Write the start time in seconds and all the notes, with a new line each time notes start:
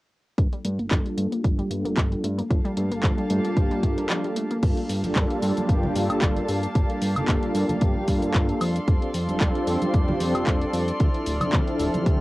0.38 G1 F3 G3 A#3 D4 F4 A4, kick, closed hi-hat
0.53 G3, closed hi-hat
0.65 G2 A3, closed hi-hat
0.79 G1 G3 A#3 D4 F4 A4, closed hi-hat
0.91 G1 F3, kick, clap, closed hi-hat
1.06 G3, closed hi-hat
1.17 G2 A3, closed hi-hat
1.32 G3 A#3 D4 F4 G4, closed hi-hat
1.44 G1 F3, kick, closed hi-hat
1.59 G3, closed hi-hat
1.70 G2 G3 A3 A#3 D4 F4 A4, closed hi-hat
1.85 G1 A#3, closed hi-hat
1.97 G1 F3, kick, clap, closed hi-hat
2.12 G3 A#3 D4 F4 A4, closed hi-hat
2.24 G2 A3, closed hi-hat
2.38 A#3, closed hi-hat
2.50 G1 F3 G3 A#3 D4 F4 G4 A4 F5 A5, kick, closed hi-hat
2.65 G3, closed hi-hat
2.77 G2 A3, closed hi-hat
2.91 G1 G3 A#3 D4 F4 A4, closed hi-hat
3.03 G1 F3, kick, clap, closed hi-hat
3.18 G3, closed hi-hat
3.30 G2 A3, closed hi-hat
3.45 G3 A#3 D4 F4 G4, closed hi-hat
3.57 G1 F3, kick, closed hi-hat
3.71 G2 G3, closed hi-hat
3.83 G2 G3 A3 A#3 D4 F4 A4, kick, closed hi-hat
3.98 G1 A#3, closed hi-hat
4.10 F3, clap, closed hi-hat
4.24 G3 A#3 D4 F4 A4, closed hi-hat
4.36 A3, closed hi-hat
4.51 A#3, closed hi-hat
4.63 G1 G3 A#3 D4 F4 G4 A4 F5 A5, kick, closed hi-hat, crash, cabasa
4.77 closed hi-hat
4.89 G2, open hi-hat, cabasa
5.03 G1 G3 A#3 D4 F4 A4, closed hi-hat, high conga, cabasa
5.16 G1, kick, clap, closed hi-hat, cabasa
5.30 closed hi-hat
5.42 G2, open hi-hat, cabasa
5.57 G3 A#3 D4 F4 G4, closed hi-hat, high conga, cabasa
5.69 G1, kick, closed hi-hat, cabasa
5.83 high conga, low conga
5.95 G2 G3 A#3 D4 F4 A4, open hi-hat, cabasa
6.10 G1, closed hi-hat, cabasa, high woodblock
6.22 G1, kick, clap, closed hi-hat, cabasa
6.37 G3 A#3 D4 F4 A4, closed hi-hat
6.49 G2, open hi-hat, cabasa
6.63 closed hi-hat, cabasa
6.75 G1 G3 A#3 D4 F4 A4, kick, closed hi-hat, cabasa
6.90 closed hi-hat
7.02 G2, open hi-hat, cabasa
7.16 G1 G3 A#3 D4 F4 A4, closed hi-hat, low conga, cabasa, high woodblock
7.28 G1, kick, clap, closed hi-hat, cabasa
7.43 closed hi-hat
7.55 G2, open hi-hat, cabasa
7.69 G3 A#3 D4 F4 G4, closed hi-hat, high conga, low conga, cabasa
7.81 G1, kick, closed hi-hat, cabasa
7.96 G2
8.08 G2 G3 A#3 D4 F4 A4, kick, open hi-hat, cabasa
8.22 G1, closed hi-hat, cabasa
8.34 G1, kick, clap, closed hi-hat, cabasa
8.49 G3 A#3 D4 F4 A4, closed hi-hat
8.61 F2 A4 D5 C6, open hi-hat, cabasa, high woodblock
8.76 closed hi-hat, cabasa
8.88 F1 G3 C4 D4 F4 A4, kick, closed hi-hat, cabasa
9.02 closed hi-hat
9.14 F2, open hi-hat, cabasa
9.28 F1 G3 C4 D4 F4 A4, closed hi-hat, high conga, cabasa
9.40 F1, kick, clap, closed hi-hat, cabasa
9.55 closed hi-hat
9.67 F2, open hi-hat, cabasa
9.81 G3 C4 D4 F4 G4, closed hi-hat, high conga, cabasa
9.94 F1, kick, closed hi-hat, cabasa
10.08 high conga, low conga
10.20 F2 G3 C4 D4 F4 A4, open hi-hat, cabasa
10.35 F1, closed hi-hat, cabasa, high woodblock
10.47 F1, kick, clap, closed hi-hat, cabasa
10.61 G3 C4 D4 F4 A4, closed hi-hat
10.73 F2, open hi-hat, cabasa
10.88 closed hi-hat, cabasa
11.00 D2 F3 C4 D4 E4 A4 F6, kick, closed hi-hat, cabasa
11.14 closed hi-hat
11.26 D1, open hi-hat, cabasa
11.41 D2 F3 C4 D4 E4 A4, closed hi-hat, high conga, low conga, cabasa, high woodblock
11.53 D2, kick, clap, closed hi-hat, cabasa
11.68 closed hi-hat
11.80 D1, open hi-hat, cabasa
11.94 F3 C4 D4 E4 G4, closed hi-hat, high conga, low conga, cabasa
12.06 D2, kick, closed hi-hat, cabasa